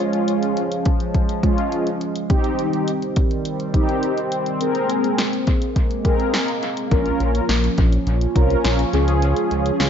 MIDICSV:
0, 0, Header, 1, 5, 480
1, 0, Start_track
1, 0, Tempo, 576923
1, 1914, Time_signature, 4, 2, 24, 8
1, 8234, End_track
2, 0, Start_track
2, 0, Title_t, "Analog polysynth"
2, 0, Program_c, 0, 90
2, 0, Note_on_c, 0, 56, 86
2, 0, Note_on_c, 0, 61, 79
2, 0, Note_on_c, 0, 65, 94
2, 521, Note_off_c, 0, 61, 0
2, 521, Note_off_c, 0, 65, 0
2, 522, Note_off_c, 0, 56, 0
2, 1193, Note_on_c, 0, 56, 84
2, 1193, Note_on_c, 0, 61, 75
2, 1193, Note_on_c, 0, 65, 90
2, 1573, Note_off_c, 0, 56, 0
2, 1573, Note_off_c, 0, 61, 0
2, 1573, Note_off_c, 0, 65, 0
2, 1912, Note_on_c, 0, 60, 83
2, 1913, Note_on_c, 0, 63, 77
2, 1913, Note_on_c, 0, 67, 93
2, 2419, Note_off_c, 0, 60, 0
2, 2419, Note_off_c, 0, 63, 0
2, 2419, Note_off_c, 0, 67, 0
2, 3113, Note_on_c, 0, 63, 76
2, 3113, Note_on_c, 0, 67, 93
2, 3114, Note_on_c, 0, 60, 84
2, 3493, Note_off_c, 0, 60, 0
2, 3493, Note_off_c, 0, 63, 0
2, 3493, Note_off_c, 0, 67, 0
2, 3832, Note_on_c, 0, 68, 79
2, 3832, Note_on_c, 0, 70, 94
2, 3833, Note_on_c, 0, 60, 86
2, 4339, Note_off_c, 0, 60, 0
2, 4339, Note_off_c, 0, 68, 0
2, 4339, Note_off_c, 0, 70, 0
2, 5033, Note_on_c, 0, 60, 86
2, 5033, Note_on_c, 0, 68, 74
2, 5033, Note_on_c, 0, 70, 93
2, 5413, Note_off_c, 0, 60, 0
2, 5413, Note_off_c, 0, 68, 0
2, 5413, Note_off_c, 0, 70, 0
2, 5754, Note_on_c, 0, 61, 84
2, 5754, Note_on_c, 0, 65, 75
2, 5754, Note_on_c, 0, 70, 94
2, 6260, Note_off_c, 0, 61, 0
2, 6260, Note_off_c, 0, 65, 0
2, 6260, Note_off_c, 0, 70, 0
2, 6954, Note_on_c, 0, 61, 86
2, 6954, Note_on_c, 0, 65, 75
2, 6954, Note_on_c, 0, 70, 94
2, 7333, Note_off_c, 0, 61, 0
2, 7333, Note_off_c, 0, 65, 0
2, 7333, Note_off_c, 0, 70, 0
2, 7434, Note_on_c, 0, 61, 86
2, 7434, Note_on_c, 0, 65, 80
2, 7434, Note_on_c, 0, 68, 96
2, 8202, Note_off_c, 0, 61, 0
2, 8202, Note_off_c, 0, 65, 0
2, 8202, Note_off_c, 0, 68, 0
2, 8234, End_track
3, 0, Start_track
3, 0, Title_t, "Analog synth pad"
3, 0, Program_c, 1, 89
3, 0, Note_on_c, 1, 53, 76
3, 0, Note_on_c, 1, 56, 68
3, 0, Note_on_c, 1, 61, 80
3, 1881, Note_off_c, 1, 61, 0
3, 1892, Note_off_c, 1, 53, 0
3, 1892, Note_off_c, 1, 56, 0
3, 1912, Note_on_c, 1, 51, 75
3, 1912, Note_on_c, 1, 55, 69
3, 1912, Note_on_c, 1, 60, 82
3, 3813, Note_off_c, 1, 51, 0
3, 3814, Note_off_c, 1, 55, 0
3, 3833, Note_on_c, 1, 58, 68
3, 3834, Note_on_c, 1, 56, 74
3, 5719, Note_off_c, 1, 60, 0
3, 5734, Note_off_c, 1, 56, 0
3, 5752, Note_on_c, 1, 61, 81
3, 5753, Note_on_c, 1, 53, 74
3, 7400, Note_off_c, 1, 58, 0
3, 7433, Note_on_c, 1, 56, 70
3, 8234, Note_off_c, 1, 53, 0
3, 8234, Note_off_c, 1, 56, 0
3, 8234, Note_off_c, 1, 61, 0
3, 8234, End_track
4, 0, Start_track
4, 0, Title_t, "Analog synth bass"
4, 0, Program_c, 2, 38
4, 5753, Note_on_c, 2, 34, 110
4, 5921, Note_off_c, 2, 34, 0
4, 5993, Note_on_c, 2, 34, 91
4, 6161, Note_off_c, 2, 34, 0
4, 6232, Note_on_c, 2, 34, 101
4, 6400, Note_off_c, 2, 34, 0
4, 6475, Note_on_c, 2, 34, 92
4, 6642, Note_off_c, 2, 34, 0
4, 6713, Note_on_c, 2, 34, 95
4, 6881, Note_off_c, 2, 34, 0
4, 6953, Note_on_c, 2, 36, 89
4, 7121, Note_off_c, 2, 36, 0
4, 7193, Note_on_c, 2, 34, 80
4, 7361, Note_off_c, 2, 34, 0
4, 7433, Note_on_c, 2, 37, 102
4, 7769, Note_off_c, 2, 37, 0
4, 7915, Note_on_c, 2, 37, 93
4, 8082, Note_off_c, 2, 37, 0
4, 8154, Note_on_c, 2, 37, 91
4, 8234, Note_off_c, 2, 37, 0
4, 8234, End_track
5, 0, Start_track
5, 0, Title_t, "Drums"
5, 111, Note_on_c, 9, 42, 46
5, 194, Note_off_c, 9, 42, 0
5, 233, Note_on_c, 9, 42, 68
5, 316, Note_off_c, 9, 42, 0
5, 355, Note_on_c, 9, 42, 49
5, 438, Note_off_c, 9, 42, 0
5, 473, Note_on_c, 9, 42, 80
5, 557, Note_off_c, 9, 42, 0
5, 596, Note_on_c, 9, 42, 49
5, 679, Note_off_c, 9, 42, 0
5, 711, Note_on_c, 9, 42, 75
5, 715, Note_on_c, 9, 36, 89
5, 794, Note_off_c, 9, 42, 0
5, 798, Note_off_c, 9, 36, 0
5, 834, Note_on_c, 9, 42, 52
5, 917, Note_off_c, 9, 42, 0
5, 953, Note_on_c, 9, 36, 78
5, 953, Note_on_c, 9, 42, 66
5, 1036, Note_off_c, 9, 42, 0
5, 1037, Note_off_c, 9, 36, 0
5, 1074, Note_on_c, 9, 42, 50
5, 1157, Note_off_c, 9, 42, 0
5, 1192, Note_on_c, 9, 36, 87
5, 1194, Note_on_c, 9, 42, 69
5, 1275, Note_off_c, 9, 36, 0
5, 1277, Note_off_c, 9, 42, 0
5, 1315, Note_on_c, 9, 42, 45
5, 1398, Note_off_c, 9, 42, 0
5, 1432, Note_on_c, 9, 42, 67
5, 1515, Note_off_c, 9, 42, 0
5, 1554, Note_on_c, 9, 42, 50
5, 1637, Note_off_c, 9, 42, 0
5, 1674, Note_on_c, 9, 42, 69
5, 1757, Note_off_c, 9, 42, 0
5, 1793, Note_on_c, 9, 42, 50
5, 1877, Note_off_c, 9, 42, 0
5, 1913, Note_on_c, 9, 36, 111
5, 1914, Note_on_c, 9, 42, 78
5, 1996, Note_off_c, 9, 36, 0
5, 1997, Note_off_c, 9, 42, 0
5, 2031, Note_on_c, 9, 42, 44
5, 2114, Note_off_c, 9, 42, 0
5, 2153, Note_on_c, 9, 42, 66
5, 2236, Note_off_c, 9, 42, 0
5, 2274, Note_on_c, 9, 42, 47
5, 2357, Note_off_c, 9, 42, 0
5, 2393, Note_on_c, 9, 42, 79
5, 2476, Note_off_c, 9, 42, 0
5, 2515, Note_on_c, 9, 42, 47
5, 2599, Note_off_c, 9, 42, 0
5, 2631, Note_on_c, 9, 42, 74
5, 2634, Note_on_c, 9, 36, 92
5, 2714, Note_off_c, 9, 42, 0
5, 2717, Note_off_c, 9, 36, 0
5, 2753, Note_on_c, 9, 42, 51
5, 2836, Note_off_c, 9, 42, 0
5, 2872, Note_on_c, 9, 42, 66
5, 2955, Note_off_c, 9, 42, 0
5, 2993, Note_on_c, 9, 42, 50
5, 3077, Note_off_c, 9, 42, 0
5, 3112, Note_on_c, 9, 36, 85
5, 3113, Note_on_c, 9, 42, 70
5, 3195, Note_off_c, 9, 36, 0
5, 3196, Note_off_c, 9, 42, 0
5, 3235, Note_on_c, 9, 42, 45
5, 3318, Note_off_c, 9, 42, 0
5, 3352, Note_on_c, 9, 42, 72
5, 3435, Note_off_c, 9, 42, 0
5, 3473, Note_on_c, 9, 42, 53
5, 3557, Note_off_c, 9, 42, 0
5, 3593, Note_on_c, 9, 42, 68
5, 3676, Note_off_c, 9, 42, 0
5, 3713, Note_on_c, 9, 42, 47
5, 3796, Note_off_c, 9, 42, 0
5, 3833, Note_on_c, 9, 42, 78
5, 3916, Note_off_c, 9, 42, 0
5, 3951, Note_on_c, 9, 42, 45
5, 4034, Note_off_c, 9, 42, 0
5, 4073, Note_on_c, 9, 42, 68
5, 4156, Note_off_c, 9, 42, 0
5, 4195, Note_on_c, 9, 42, 49
5, 4278, Note_off_c, 9, 42, 0
5, 4313, Note_on_c, 9, 38, 99
5, 4313, Note_on_c, 9, 42, 80
5, 4396, Note_off_c, 9, 38, 0
5, 4396, Note_off_c, 9, 42, 0
5, 4436, Note_on_c, 9, 42, 48
5, 4519, Note_off_c, 9, 42, 0
5, 4551, Note_on_c, 9, 42, 73
5, 4554, Note_on_c, 9, 36, 90
5, 4634, Note_off_c, 9, 42, 0
5, 4638, Note_off_c, 9, 36, 0
5, 4673, Note_on_c, 9, 42, 52
5, 4756, Note_off_c, 9, 42, 0
5, 4792, Note_on_c, 9, 42, 67
5, 4793, Note_on_c, 9, 36, 81
5, 4875, Note_off_c, 9, 42, 0
5, 4876, Note_off_c, 9, 36, 0
5, 4914, Note_on_c, 9, 42, 50
5, 4997, Note_off_c, 9, 42, 0
5, 5032, Note_on_c, 9, 36, 86
5, 5033, Note_on_c, 9, 42, 69
5, 5115, Note_off_c, 9, 36, 0
5, 5116, Note_off_c, 9, 42, 0
5, 5155, Note_on_c, 9, 42, 45
5, 5238, Note_off_c, 9, 42, 0
5, 5272, Note_on_c, 9, 38, 111
5, 5272, Note_on_c, 9, 42, 70
5, 5355, Note_off_c, 9, 42, 0
5, 5356, Note_off_c, 9, 38, 0
5, 5394, Note_on_c, 9, 42, 52
5, 5477, Note_off_c, 9, 42, 0
5, 5514, Note_on_c, 9, 42, 67
5, 5597, Note_off_c, 9, 42, 0
5, 5633, Note_on_c, 9, 42, 49
5, 5716, Note_off_c, 9, 42, 0
5, 5753, Note_on_c, 9, 36, 111
5, 5753, Note_on_c, 9, 42, 78
5, 5836, Note_off_c, 9, 42, 0
5, 5837, Note_off_c, 9, 36, 0
5, 5871, Note_on_c, 9, 42, 45
5, 5954, Note_off_c, 9, 42, 0
5, 5993, Note_on_c, 9, 42, 67
5, 6076, Note_off_c, 9, 42, 0
5, 6114, Note_on_c, 9, 42, 50
5, 6197, Note_off_c, 9, 42, 0
5, 6233, Note_on_c, 9, 38, 102
5, 6233, Note_on_c, 9, 42, 81
5, 6316, Note_off_c, 9, 38, 0
5, 6317, Note_off_c, 9, 42, 0
5, 6356, Note_on_c, 9, 42, 48
5, 6439, Note_off_c, 9, 42, 0
5, 6471, Note_on_c, 9, 42, 77
5, 6475, Note_on_c, 9, 36, 92
5, 6554, Note_off_c, 9, 42, 0
5, 6558, Note_off_c, 9, 36, 0
5, 6593, Note_on_c, 9, 42, 52
5, 6677, Note_off_c, 9, 42, 0
5, 6713, Note_on_c, 9, 42, 69
5, 6796, Note_off_c, 9, 42, 0
5, 6834, Note_on_c, 9, 42, 50
5, 6917, Note_off_c, 9, 42, 0
5, 6952, Note_on_c, 9, 36, 85
5, 6954, Note_on_c, 9, 42, 71
5, 7036, Note_off_c, 9, 36, 0
5, 7037, Note_off_c, 9, 42, 0
5, 7075, Note_on_c, 9, 42, 46
5, 7159, Note_off_c, 9, 42, 0
5, 7193, Note_on_c, 9, 38, 117
5, 7193, Note_on_c, 9, 42, 68
5, 7276, Note_off_c, 9, 38, 0
5, 7276, Note_off_c, 9, 42, 0
5, 7314, Note_on_c, 9, 42, 52
5, 7397, Note_off_c, 9, 42, 0
5, 7434, Note_on_c, 9, 42, 69
5, 7517, Note_off_c, 9, 42, 0
5, 7554, Note_on_c, 9, 42, 48
5, 7637, Note_off_c, 9, 42, 0
5, 7674, Note_on_c, 9, 42, 78
5, 7757, Note_off_c, 9, 42, 0
5, 7792, Note_on_c, 9, 42, 46
5, 7875, Note_off_c, 9, 42, 0
5, 7914, Note_on_c, 9, 42, 65
5, 7997, Note_off_c, 9, 42, 0
5, 8035, Note_on_c, 9, 42, 47
5, 8118, Note_off_c, 9, 42, 0
5, 8153, Note_on_c, 9, 38, 100
5, 8154, Note_on_c, 9, 42, 77
5, 8234, Note_off_c, 9, 38, 0
5, 8234, Note_off_c, 9, 42, 0
5, 8234, End_track
0, 0, End_of_file